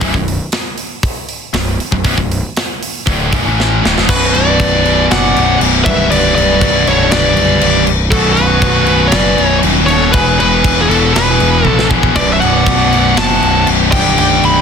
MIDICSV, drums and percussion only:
0, 0, Header, 1, 2, 480
1, 0, Start_track
1, 0, Key_signature, 2, "minor"
1, 0, Tempo, 505902
1, 16, Time_signature, 4, 2, 24, 8
1, 13867, End_track
2, 0, Start_track
2, 0, Title_t, "Drums"
2, 13, Note_on_c, 9, 36, 99
2, 13, Note_on_c, 9, 46, 77
2, 107, Note_off_c, 9, 36, 0
2, 108, Note_off_c, 9, 46, 0
2, 133, Note_on_c, 9, 36, 74
2, 228, Note_off_c, 9, 36, 0
2, 265, Note_on_c, 9, 46, 50
2, 360, Note_off_c, 9, 46, 0
2, 495, Note_on_c, 9, 46, 67
2, 502, Note_on_c, 9, 38, 109
2, 590, Note_off_c, 9, 46, 0
2, 597, Note_off_c, 9, 38, 0
2, 736, Note_on_c, 9, 46, 56
2, 831, Note_off_c, 9, 46, 0
2, 979, Note_on_c, 9, 36, 104
2, 983, Note_on_c, 9, 46, 71
2, 1074, Note_off_c, 9, 36, 0
2, 1077, Note_off_c, 9, 46, 0
2, 1220, Note_on_c, 9, 46, 54
2, 1315, Note_off_c, 9, 46, 0
2, 1459, Note_on_c, 9, 46, 76
2, 1466, Note_on_c, 9, 38, 107
2, 1554, Note_off_c, 9, 46, 0
2, 1561, Note_off_c, 9, 38, 0
2, 1710, Note_on_c, 9, 46, 54
2, 1805, Note_off_c, 9, 46, 0
2, 1823, Note_on_c, 9, 36, 89
2, 1918, Note_off_c, 9, 36, 0
2, 1940, Note_on_c, 9, 46, 77
2, 1941, Note_on_c, 9, 36, 97
2, 2034, Note_off_c, 9, 46, 0
2, 2036, Note_off_c, 9, 36, 0
2, 2065, Note_on_c, 9, 36, 79
2, 2160, Note_off_c, 9, 36, 0
2, 2197, Note_on_c, 9, 46, 55
2, 2291, Note_off_c, 9, 46, 0
2, 2434, Note_on_c, 9, 46, 76
2, 2441, Note_on_c, 9, 38, 108
2, 2529, Note_off_c, 9, 46, 0
2, 2536, Note_off_c, 9, 38, 0
2, 2681, Note_on_c, 9, 46, 62
2, 2776, Note_off_c, 9, 46, 0
2, 2912, Note_on_c, 9, 36, 101
2, 2924, Note_on_c, 9, 46, 80
2, 3007, Note_off_c, 9, 36, 0
2, 3019, Note_off_c, 9, 46, 0
2, 3156, Note_on_c, 9, 36, 106
2, 3166, Note_on_c, 9, 46, 58
2, 3251, Note_off_c, 9, 36, 0
2, 3261, Note_off_c, 9, 46, 0
2, 3416, Note_on_c, 9, 38, 60
2, 3511, Note_off_c, 9, 38, 0
2, 3658, Note_on_c, 9, 38, 91
2, 3753, Note_off_c, 9, 38, 0
2, 3774, Note_on_c, 9, 38, 85
2, 3869, Note_off_c, 9, 38, 0
2, 3880, Note_on_c, 9, 36, 118
2, 3887, Note_on_c, 9, 49, 127
2, 3887, Note_on_c, 9, 57, 85
2, 3974, Note_off_c, 9, 36, 0
2, 3982, Note_off_c, 9, 49, 0
2, 3982, Note_off_c, 9, 57, 0
2, 4123, Note_on_c, 9, 57, 61
2, 4218, Note_off_c, 9, 57, 0
2, 4362, Note_on_c, 9, 36, 83
2, 4373, Note_on_c, 9, 57, 78
2, 4457, Note_off_c, 9, 36, 0
2, 4467, Note_off_c, 9, 57, 0
2, 4606, Note_on_c, 9, 57, 61
2, 4701, Note_off_c, 9, 57, 0
2, 4848, Note_on_c, 9, 57, 81
2, 4854, Note_on_c, 9, 38, 113
2, 4942, Note_off_c, 9, 57, 0
2, 4949, Note_off_c, 9, 38, 0
2, 5090, Note_on_c, 9, 57, 62
2, 5185, Note_off_c, 9, 57, 0
2, 5324, Note_on_c, 9, 57, 83
2, 5419, Note_off_c, 9, 57, 0
2, 5560, Note_on_c, 9, 36, 114
2, 5565, Note_on_c, 9, 57, 66
2, 5655, Note_off_c, 9, 36, 0
2, 5660, Note_off_c, 9, 57, 0
2, 5801, Note_on_c, 9, 57, 92
2, 5896, Note_off_c, 9, 57, 0
2, 6049, Note_on_c, 9, 57, 64
2, 6143, Note_off_c, 9, 57, 0
2, 6276, Note_on_c, 9, 36, 87
2, 6284, Note_on_c, 9, 57, 88
2, 6371, Note_off_c, 9, 36, 0
2, 6379, Note_off_c, 9, 57, 0
2, 6520, Note_on_c, 9, 57, 68
2, 6615, Note_off_c, 9, 57, 0
2, 6749, Note_on_c, 9, 57, 84
2, 6756, Note_on_c, 9, 38, 114
2, 6844, Note_off_c, 9, 57, 0
2, 6851, Note_off_c, 9, 38, 0
2, 6989, Note_on_c, 9, 57, 67
2, 7084, Note_off_c, 9, 57, 0
2, 7224, Note_on_c, 9, 57, 88
2, 7319, Note_off_c, 9, 57, 0
2, 7465, Note_on_c, 9, 57, 69
2, 7560, Note_off_c, 9, 57, 0
2, 7702, Note_on_c, 9, 36, 123
2, 7707, Note_on_c, 9, 57, 86
2, 7796, Note_off_c, 9, 36, 0
2, 7802, Note_off_c, 9, 57, 0
2, 7940, Note_on_c, 9, 57, 56
2, 8035, Note_off_c, 9, 57, 0
2, 8178, Note_on_c, 9, 36, 84
2, 8182, Note_on_c, 9, 57, 80
2, 8273, Note_off_c, 9, 36, 0
2, 8277, Note_off_c, 9, 57, 0
2, 8411, Note_on_c, 9, 57, 62
2, 8506, Note_off_c, 9, 57, 0
2, 8649, Note_on_c, 9, 57, 86
2, 8655, Note_on_c, 9, 38, 117
2, 8744, Note_off_c, 9, 57, 0
2, 8750, Note_off_c, 9, 38, 0
2, 8900, Note_on_c, 9, 57, 62
2, 8995, Note_off_c, 9, 57, 0
2, 9135, Note_on_c, 9, 57, 80
2, 9230, Note_off_c, 9, 57, 0
2, 9376, Note_on_c, 9, 57, 65
2, 9471, Note_off_c, 9, 57, 0
2, 9613, Note_on_c, 9, 57, 88
2, 9620, Note_on_c, 9, 36, 118
2, 9708, Note_off_c, 9, 57, 0
2, 9714, Note_off_c, 9, 36, 0
2, 9866, Note_on_c, 9, 57, 65
2, 9961, Note_off_c, 9, 57, 0
2, 10099, Note_on_c, 9, 36, 91
2, 10102, Note_on_c, 9, 57, 89
2, 10194, Note_off_c, 9, 36, 0
2, 10197, Note_off_c, 9, 57, 0
2, 10352, Note_on_c, 9, 57, 70
2, 10446, Note_off_c, 9, 57, 0
2, 10585, Note_on_c, 9, 57, 86
2, 10591, Note_on_c, 9, 38, 108
2, 10680, Note_off_c, 9, 57, 0
2, 10686, Note_off_c, 9, 38, 0
2, 10817, Note_on_c, 9, 57, 65
2, 10912, Note_off_c, 9, 57, 0
2, 11050, Note_on_c, 9, 48, 66
2, 11145, Note_off_c, 9, 48, 0
2, 11186, Note_on_c, 9, 38, 72
2, 11280, Note_off_c, 9, 38, 0
2, 11297, Note_on_c, 9, 36, 97
2, 11392, Note_off_c, 9, 36, 0
2, 11416, Note_on_c, 9, 36, 81
2, 11511, Note_off_c, 9, 36, 0
2, 11534, Note_on_c, 9, 57, 89
2, 11535, Note_on_c, 9, 36, 102
2, 11629, Note_off_c, 9, 57, 0
2, 11630, Note_off_c, 9, 36, 0
2, 11782, Note_on_c, 9, 57, 64
2, 11877, Note_off_c, 9, 57, 0
2, 12017, Note_on_c, 9, 36, 92
2, 12027, Note_on_c, 9, 57, 78
2, 12112, Note_off_c, 9, 36, 0
2, 12122, Note_off_c, 9, 57, 0
2, 12264, Note_on_c, 9, 57, 62
2, 12359, Note_off_c, 9, 57, 0
2, 12494, Note_on_c, 9, 57, 85
2, 12501, Note_on_c, 9, 38, 110
2, 12589, Note_off_c, 9, 57, 0
2, 12595, Note_off_c, 9, 38, 0
2, 12738, Note_on_c, 9, 57, 59
2, 12833, Note_off_c, 9, 57, 0
2, 12969, Note_on_c, 9, 57, 82
2, 13064, Note_off_c, 9, 57, 0
2, 13207, Note_on_c, 9, 57, 110
2, 13211, Note_on_c, 9, 36, 113
2, 13302, Note_off_c, 9, 57, 0
2, 13306, Note_off_c, 9, 36, 0
2, 13452, Note_on_c, 9, 57, 89
2, 13546, Note_off_c, 9, 57, 0
2, 13696, Note_on_c, 9, 57, 63
2, 13791, Note_off_c, 9, 57, 0
2, 13867, End_track
0, 0, End_of_file